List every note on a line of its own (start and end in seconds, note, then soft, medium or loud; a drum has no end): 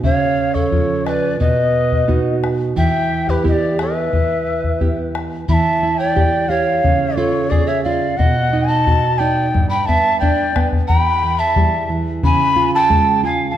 0.04 1.36 C#3 medium
0.04 0.56 C#5 medium
0.04 0.56 F5 medium
0.04 bombo low medium
0.54 1.08 A4 medium
0.54 1.07 C#5 medium
0.54 bombo low soft
0.71 1.38 F3 soft
0.71 1.39 F4 medium
0.71 bombo low medium
1.05 1.39 B4 medium
1.05 1.11 D#5 medium
1.05 bombo rim soft
1.10 1.40 D5 medium
1.40 2.73 B2 medium
1.40 2.38 B4 medium
1.40 2.39 D#5 medium
1.40 bombo low medium
1.92 bombo low soft
2.08 2.75 B3 soft
2.08 2.75 D#4 soft
2.08 2.75 F#4 soft
2.08 bombo low medium
2.44 bombo rim soft
2.76 4.09 E3 medium
2.76 3.30 E5 medium
2.76 3.31 G5 loud
2.76 bombo low medium
3.28 3.45 G4 medium
3.28 3.46 B4 medium
3.28 bombo low medium
3.44 4.11 B3 soft
3.44 4.11 E4 soft
3.44 4.11 G4 medium
3.44 3.77 G4 medium
3.44 bombo low medium
3.48 3.53 D#5 medium
3.52 3.78 D5 medium
3.79 5.11 B4 medium
3.79 5.12 E5 medium
3.79 bombo rim soft
4.13 5.45 E3 medium
4.13 bombo low medium
4.64 bombo low soft
4.81 5.47 B3 soft
4.81 5.47 E4 soft
4.81 5.47 G4 soft
4.81 bombo low medium
5.15 bombo rim soft
5.48 6.80 E3 medium
5.48 6.00 E5 medium
5.48 5.54 B5 medium
5.48 bombo low medium
5.53 6.00 A5 medium
5.83 6.16 E4 soft
5.98 6.51 D5 medium
5.98 6.50 G5 medium
6.16 6.49 G4 medium
6.16 bombo low medium
6.49 6.83 G4 soft
6.49 7.18 C#5 medium
6.49 7.17 F5 medium
6.84 8.15 C#3 medium
6.84 bombo low medium
7.16 7.51 F4 medium
7.16 7.51 A4 medium
7.16 7.52 C#5 medium
7.49 7.68 G#4 medium
7.49 7.85 G#4 medium
7.49 7.69 D5 medium
7.49 bombo low medium
7.67 7.83 C#5 medium
7.67 7.83 E5 medium
7.84 8.19 F4 soft
7.84 8.19 D5 medium
7.84 8.19 F5 medium
8.17 9.50 B2 medium
8.17 8.67 D#5 medium
8.17 8.70 F#5 medium
8.17 bombo low medium
8.53 8.86 D#4 medium
8.67 9.20 D#5 medium
8.67 9.20 A5 loud
8.87 9.20 F#4 medium
8.87 bombo low medium
9.18 9.53 D#4 soft
9.18 9.47 D5 medium
9.18 9.69 G5 loud
9.54 10.85 G2 medium
9.54 bombo low medium
9.70 9.89 G5 medium
9.70 9.87 B5 medium
9.86 10.21 B3 medium
9.86 10.19 E5 medium
9.86 10.19 A5 loud
9.86 bombo low medium
10.20 10.55 D4 medium
10.20 10.68 D5 medium
10.20 10.68 G5 medium
10.20 bombo low medium
10.56 10.88 B3 soft
10.56 bombo rim soft
10.56 bombo low medium
10.72 bombo low medium
10.88 12.20 E2 medium
10.88 11.39 G5 medium
10.88 11.41 B5 loud
10.88 bombo low medium
11.23 11.56 E3 soft
11.38 11.89 E5 medium
11.38 11.90 A5 medium
11.56 11.89 G3 medium
11.56 bombo low medium
11.90 12.22 E3 soft
12.23 13.54 C#3 medium
12.23 12.71 G#5 medium
12.23 12.71 B5 loud
12.23 bombo low medium
12.56 12.89 F4 medium
12.75 13.21 G5 medium
12.75 13.21 A5 loud
12.90 13.23 G#3 medium
12.90 bombo low medium
13.24 13.56 F4 soft
13.24 13.49 F5 medium
13.24 13.49 G#5 medium
13.50 13.57 F5 medium
13.50 13.57 A5 medium